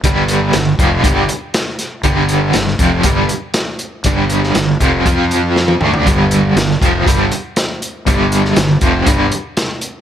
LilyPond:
<<
  \new Staff \with { instrumentName = "Overdriven electric guitar" } { \clef bass \time 4/4 \key f \lydian \tempo 4 = 120 <g, d g>4 <g, d>8 <f, c f>8 <g, d g>8 r4. | <g, d g>4 <g, d>8 <f, c f>8 <g, d g>8 r4. | <g, d g>4 <g, d>8 <f, c f>8 <f c' f'>4. <d a d'>8 | <g, d g>4 <g, d>8 <f, c f>8 <g, d g>8 r4. |
<g, d g>4 <g, d>8 <f, c f>8 <g, d g>8 r4. | }
  \new Staff \with { instrumentName = "Fingered electric bass" } { \clef bass \time 4/4 \key f \lydian g,,4 g,,8 f,,8 g,,8 r4. | g,,4 g,,8 f,,8 g,,8 r4. | g,,4 g,,8 f,,8 f,4. d,8 | g,,4 g,,8 f,,8 g,,8 r4. |
g,,4 g,,8 f,,8 g,,8 r4. | }
  \new DrumStaff \with { instrumentName = "Drums" } \drummode { \time 4/4 <hh bd>8 hh8 <hh sn>8 <hh bd>8 <hh bd>8 hh8 <hh sn>8 <hh sn>8 | <hh bd>8 hh8 <hh sn>16 sn16 <hh bd>8 <hh bd>8 hh8 <hh sn>8 hh8 | <hh bd>8 hh16 sn16 <hh sn>8 <hh bd>8 <hh bd>8 hh8 sn16 tommh16 toml16 tomfh16 | <hh bd>8 hh8 <hh sn>16 sn16 <hh bd>8 <hh bd>8 hh8 <hh sn>8 hh8 |
<hh bd>8 hh16 sn16 <hh sn>8 <hh bd>8 <hh bd>8 hh8 <hh sn>8 hh8 | }
>>